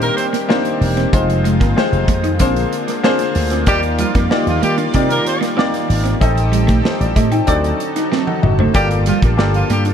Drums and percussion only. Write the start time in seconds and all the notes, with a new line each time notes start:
0.02 closed hi-hat
0.18 closed hi-hat
0.34 snare, closed hi-hat
0.50 snare
0.65 closed hi-hat
0.82 open hi-hat
0.97 snare, closed hi-hat
1.13 kick, closed hi-hat
1.30 closed hi-hat
1.45 closed hi-hat
1.61 kick, snare, closed hi-hat
1.78 snare
1.93 closed hi-hat
2.08 kick, closed hi-hat
2.24 closed hi-hat
2.39 kick, closed hi-hat
2.56 closed hi-hat
2.73 closed hi-hat
2.88 snare, closed hi-hat
3.04 snare
3.19 snare, closed hi-hat
3.35 open hi-hat
3.50 snare, closed hi-hat
3.66 kick, closed hi-hat
3.83 closed hi-hat
3.99 closed hi-hat
4.15 kick, snare, closed hi-hat
4.31 snare
4.47 closed hi-hat
4.63 closed hi-hat
4.78 closed hi-hat
4.94 kick, closed hi-hat
5.10 closed hi-hat
5.26 closed hi-hat
5.43 snare, closed hi-hat
5.59 snare
5.74 snare, closed hi-hat
5.90 open hi-hat
6.05 snare, closed hi-hat
6.21 kick, closed hi-hat
6.37 closed hi-hat
6.53 closed hi-hat
6.68 kick, snare, closed hi-hat
6.85 snare
7.01 closed hi-hat
7.16 kick, closed hi-hat
7.32 closed hi-hat
7.47 kick, closed hi-hat
7.64 closed hi-hat
7.80 closed hi-hat
7.96 snare, closed hi-hat
8.12 snare
8.27 high tom
8.43 mid tom
8.59 floor tom
8.74 kick, closed hi-hat
8.91 closed hi-hat
9.06 closed hi-hat
9.22 kick, snare, closed hi-hat
9.39 snare
9.54 closed hi-hat
9.70 closed hi-hat
9.85 closed hi-hat